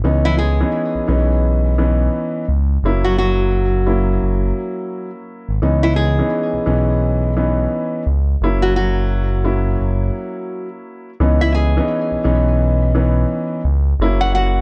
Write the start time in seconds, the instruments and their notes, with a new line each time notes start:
0.04 analog synth bass C#2, grand piano E3 B3 C#4 D#4
0.25 nylon-string guitar E3 E4
0.38 nylon-string guitar G#3 G#4
0.60 grand piano E3 B3 C#4 D#4
0.95 analog synth bass B1
1.08 analog synth bass B1, grand piano E3 B3 C#4 D#4
1.78 grand piano E3 B3 C#4 D#4
2.48 analog synth bass C#2
2.83 analog synth bass F#1, grand piano F#3 A#3 C#4 E4
3.04 nylon-string guitar F#3 F#4
3.18 nylon-string guitar F#3 F#4
3.86 grand piano F#3 A#3 C#4 E4
4.23 analog synth bass F#1
5.49 analog synth bass G#1
5.62 analog synth bass C#2, grand piano E3 B3 C#4 D#4
5.83 nylon-string guitar E3 E4
5.96 nylon-string guitar G#3 G#4
6.19 grand piano E3 B3 C#4 D#4
6.53 analog synth bass B1
6.66 analog synth bass B1, grand piano E3 B3 C#4 D#4
7.37 grand piano E3 B3 C#4 D#4
8.06 analog synth bass C#2
8.41 analog synth bass F#1, grand piano F#3 A#3 C#4 E4
8.62 nylon-string guitar F#3 F#4
8.76 nylon-string guitar F#3 F#4
9.44 grand piano F#3 A#3 C#4 E4
9.81 analog synth bass F#1
11.20 analog synth bass C#2, grand piano E3 B3 C#4 D#4
11.41 nylon-string guitar E4 E5
11.54 nylon-string guitar G#4 G#5
11.77 grand piano E3 B3 C#4 D#4
12.11 analog synth bass B1
12.24 analog synth bass B1, grand piano E3 B3 C#4 D#4
12.95 grand piano E3 B3 C#4 D#4
13.64 analog synth bass C#2
13.99 analog synth bass F#1, grand piano F#3 A#3 C#4 E4
14.21 nylon-string guitar F#4 F#5
14.35 nylon-string guitar F#4 F#5